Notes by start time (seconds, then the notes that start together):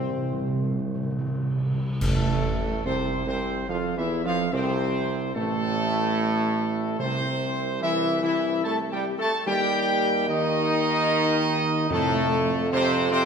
Already playing: C2 E3 G3 C4 C5
0.02 C3
0.10 C3
0.17 C3
0.25 C3
0.33 C3
0.40 C3
0.48 C3
0.56 C3
0.64 C3
0.72 C3
0.80 C3
0.88 C3
0.95 C3
1.03 C3
1.11 C3
1.19 C3
1.27 C3
1.34 C3
1.42 C3
1.50 C3
1.58 C3
1.66 C3
1.74 C3
1.81 C3
1.89 C3
2.01 A1 F2 A2 A3 A4, concert bass drum, crash
2.85 C2 C3 C4 C5
3.27 C2 C3 C4 C5
3.69 F2 F3 F4 F5
3.97 E2 E3 E4 E5
4.25 F2 F3 F4 F5
4.52 C2 C3 C4 C5
5.35 A1 A2 A3 A4
6.99 C2 C3 C4 C5
7.81 E3 E4 E5
8.22 E3 E4 E5
8.64 A3 A4 A5
8.92 G3 G4 G5
9.18 A3 A4 A5
9.46 D#2 G3 G4 G5
10.28 D#3 D#4 D#5
11.90 F2 A2 A3 A4
12.71 C3 C4 C5
13.12 C3 C4 C5